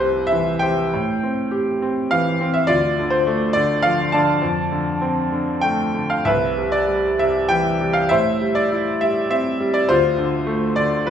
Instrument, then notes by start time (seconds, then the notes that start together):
grand piano
Already playing: C2 G3 E4 B4 C5
0.00 C3
0.27 E5
0.32 E3
0.59 C3 C5 G5
0.93 A2
1.23 C4
1.51 G4
1.82 C4
2.11 E3 F5
2.41 C4
2.54 E5
2.67 D2 F4 D5
2.99 D3
3.10 C5
3.27 A3
3.53 D3 D5
3.82 F3 F5
4.12 D3 D5 A5
4.42 F2
4.72 D3
5.01 C4
5.32 D3
5.61 A3 G5
5.94 D3
6.10 F5
6.25 C2 B4 E5
6.58 C3
6.72 D5
6.88 G3
7.19 C3 E5
7.49 E3 G5
7.80 C3
7.93 F5
8.09 A2 C5 E5
8.41 G3
8.55 D5
8.72 E4
9.01 G3 E5
9.30 C4 E5
9.60 G3
9.74 D5
9.89 D2 F4 C5
10.18 D3
10.47 A3
10.76 D3 D5
11.06 F3 B4